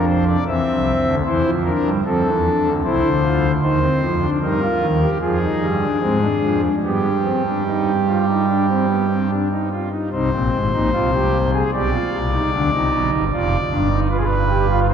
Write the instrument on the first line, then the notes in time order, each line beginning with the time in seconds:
pipe organ
Already playing: F2 F3 D4
0.08 C5
0.27 D5
0.47 E2 E3 C4 E5
0.67 C2 C3
1.05 D2 D3
1.26 E2 E3 E4 C5
1.46 F2 F3
1.65 D4 A#4
1.85 G2 G3
2.05 F2 F3 C4 A4
2.25 E2 E3
2.45 D4
2.65 D2 D3
2.84 C2 C3 E4 C5
3.03 D2 D3
3.23 F4
3.61 D#2 D#3 D#4 C5
3.81 C4
4.01 F2 F3
4.22 D4
4.42 G2 G3 D#4 A#4
4.61 F4
4.81 D#2 D#3
5.01 G4
5.21 F2 F3 F4 G#4
5.41 D#4
5.61 G2 G3
5.82 D4
6.01 G#2 G#3 C4
6.22 D4
6.42 F2 F3
6.83 G2 G3 B3 G4
7.25 C4
7.46 D4
7.66 D#4
8.08 F4
8.28 D#4
8.48 D4
8.68 C4
8.89 B3
9.10 C4
9.30 D4
9.51 D#4
9.71 F4
9.91 D#4
10.13 C2 C3 D#4 C5
10.32 A#1 A#2 C4
10.52 G#1 G#2
10.72 A#1 A#2 D#4
10.92 C2 C3 F4
11.13 G4
11.54 G#4
11.73 B1 B2 G4 D5
11.93 F4
12.12 C2 C3
12.33 D#4
12.53 D2 D3 D4
12.73 C2 C3 D#4
12.93 B1 B2
13.12 G1 G2
13.32 F1 F2 F4 D5
13.71 G1 G2 D4
13.91 D#4
14.11 F4 B4
14.18 G#4
14.25 B4
14.50 G4
14.70 F4
14.89 D#4 C5